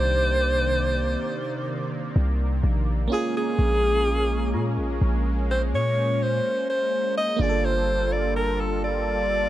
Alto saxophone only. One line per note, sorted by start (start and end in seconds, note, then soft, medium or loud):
0.00 2.37 C5 loud
3.13 3.34 G#4 loud
3.37 4.98 G#4 loud
5.51 5.61 C5 medium
5.75 6.24 C#5 loud
6.22 6.69 C5 loud
6.70 7.13 C5 loud
7.18 7.43 D#5 loud
7.41 7.66 D5 loud
7.65 8.14 C5 loud
8.13 8.35 D5 loud
8.36 8.62 A#4 loud
8.60 8.83 A4 medium
8.84 9.49 D5 loud